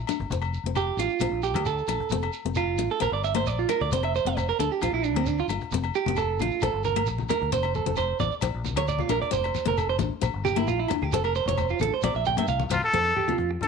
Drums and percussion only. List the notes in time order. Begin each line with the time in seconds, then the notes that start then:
0.07 cajon slap, low agogo, shekere
0.20 cajon bass
0.31 cajon bass, shekere
0.42 cajon slap, low agogo, shekere
0.53 cajon slap, shekere
0.76 cajon bass, cajon slap, low agogo, shekere
0.98 shekere
1.10 shekere
1.20 cajon bass, cajon slap, low agogo, shekere
1.43 shekere
1.54 cajon slap, low agogo, shekere
1.65 cajon bass, shekere
1.78 shekere
1.88 cajon slap, low agogo, shekere
2.00 cajon bass
2.10 cajon bass, shekere
2.22 cajon slap, low agogo, shekere
2.33 cajon slap, shekere
2.55 cajon bass, cajon slap, low agogo, shekere
2.77 shekere
2.90 shekere
3.01 cajon bass, cajon slap, low agogo, shekere
3.24 cajon slap, shekere
3.35 cajon slap, low agogo, shekere
3.46 cajon bass, shekere
3.59 shekere
3.69 cajon slap, low agogo, shekere
3.81 cajon bass
3.91 cajon bass, shekere
4.03 cajon slap, low agogo
4.15 shekere
4.37 cajon bass, cajon slap, low agogo, shekere
4.48 shekere
4.60 shekere
4.72 shekere
4.81 cajon bass, cajon slap, low agogo, shekere
5.03 shekere
5.16 cajon slap, low agogo, shekere
5.26 cajon bass, shekere
5.38 shekere
5.49 cajon slap, low agogo, shekere
5.61 cajon bass, shekere
5.71 cajon bass, shekere
5.84 cajon slap, low agogo, shekere
5.95 shekere
6.06 high conga
6.16 cajon bass, cajon slap, low agogo, shekere
6.39 high conga, shekere
6.51 shekere
6.61 cajon bass, cajon slap, low agogo, shekere
6.84 high conga, shekere
6.96 cajon slap, low agogo, shekere
7.06 cajon bass, shekere
7.18 high conga, shekere
7.29 cajon slap, low conga, low agogo, shekere
7.42 cajon bass
7.52 cajon bass, shekere
7.63 cajon slap, low agogo, shekere
7.74 low conga, shekere
7.87 high conga
7.96 cajon bass, cajon slap, low agogo, shekere
8.20 high conga, low conga, shekere
8.31 shekere
8.41 cajon bass, cajon slap, low agogo, shekere
8.65 cajon slap, high conga, shekere
8.76 cajon slap, low agogo, shekere
8.88 cajon bass, shekere
8.99 high conga, shekere
9.09 cajon slap, low agogo, shekere
9.22 cajon bass
9.32 cajon bass, shekere
9.44 cajon slap, low agogo, shekere
9.55 low conga, shekere
9.66 high conga
9.78 cajon bass, cajon slap, low agogo, shekere
9.99 high conga, low conga, shekere
10.22 cajon bass, cajon slap, low agogo, shekere
10.45 high conga, shekere
10.56 cajon slap, low agogo, shekere
10.68 cajon bass, shekere
10.88 cajon slap, low conga, low agogo, shekere
11.02 cajon bass
11.12 cajon bass, shekere
11.24 cajon slap, low agogo, shekere
11.35 shekere
11.48 high conga
11.58 cajon bass, cajon slap, low conga, low agogo, shekere
11.69 shekere
11.79 high conga, shekere
12.02 cajon bass, cajon slap, low agogo, shekere
12.14 shekere
12.25 high conga, shekere
12.37 cajon slap, low agogo, shekere
12.47 cajon bass, shekere
12.60 high conga, shekere
12.70 cajon slap, low conga, low agogo, shekere
12.82 cajon bass, shekere
12.94 cajon bass
13.05 cajon slap
13.16 low conga
13.28 high conga
13.38 cajon bass, cajon slap
13.61 low conga